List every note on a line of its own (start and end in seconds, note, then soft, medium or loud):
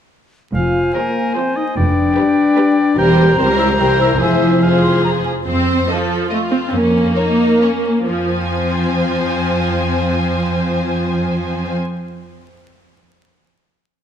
0.54 0.87 F1 medium
0.54 0.87 F2 soft
0.54 0.93 F4 medium
0.54 1.80 C5 soft
0.54 0.93 F5 medium
0.54 1.78 G#5 soft
0.95 1.26 F3 soft
0.95 1.35 A#3 medium
0.95 1.26 G#4 soft
0.95 1.34 A#4 soft
0.95 1.25 C5 soft
1.35 1.67 F3 medium
1.35 1.56 C4 medium
1.35 1.66 G#4 soft
1.35 1.58 C5 medium
1.35 1.66 C5 soft
1.56 1.65 D#4 medium
1.56 1.76 D#5 medium
1.76 2.09 F1 medium
1.76 2.09 F2 medium
1.76 2.95 D4 medium
1.76 3.00 B4 soft
1.76 2.95 D5 medium
1.76 2.97 G5 soft
2.16 2.48 G3 medium
2.16 2.47 G4 medium
2.16 2.47 B4 medium
2.57 2.88 G3 medium
2.57 2.87 G4 medium
2.57 2.87 B4 medium
2.97 3.35 E1 medium
2.97 3.35 E2 medium
2.97 3.36 G3 medium
2.97 3.38 G4 medium
2.97 3.36 A#4 soft
2.97 3.35 C5 soft
2.97 5.26 C5 medium
2.97 3.38 G5 medium
2.97 4.18 A#5 medium
3.37 3.78 C#2 medium
3.37 3.79 C#2 medium
3.37 3.78 G3 medium
3.37 3.47 C4 medium
3.37 3.77 A#4 medium
3.37 3.78 C5 soft
3.37 3.48 C5 medium
3.58 3.68 E4 medium
3.58 3.68 E5 medium
3.78 4.21 C2 medium
3.78 4.21 E3 soft
3.78 3.99 G4 medium
3.78 4.19 A#4 soft
3.78 4.20 C5 soft
3.78 4.00 G5 medium
4.01 4.10 E4 medium
4.01 4.10 E5 medium
4.21 5.26 F1 soft
4.21 5.26 F2 soft
4.21 4.63 F3 soft
4.21 4.62 E4 medium
4.21 4.62 G#4 soft
4.21 4.62 C5 soft
4.21 4.65 E5 medium
4.21 4.58 G#5 soft
4.62 5.25 F3 soft
4.62 5.05 F4 medium
4.62 5.25 G#4 soft
4.62 5.25 C5 soft
4.62 5.05 F5 soft
4.62 4.68 G#5 soft
4.83 5.04 C6 medium
5.04 5.10 A#5 medium
5.25 5.31 G#5 soft
5.46 5.81 F2 soft
5.46 5.85 C4 medium
5.46 5.85 C5 soft
5.88 6.30 F3 medium
5.88 6.30 A4 soft
5.88 5.96 D#5 soft
6.30 6.38 A3 medium
6.30 6.71 F4 soft
6.30 6.38 D#5 soft
6.51 6.57 C4 medium
6.67 6.73 C4 soft
6.72 7.09 F2 medium
6.72 8.11 A#3 medium
6.72 7.16 C#4 soft
7.16 7.61 D#4 medium
7.16 7.24 C#5 soft
7.61 7.86 C#4 soft
7.61 7.70 C#5 soft
8.10 11.74 F2 soft
8.10 11.74 F3 medium
8.10 11.74 C4 soft
8.10 11.74 C5 soft
8.10 11.74 G#5 soft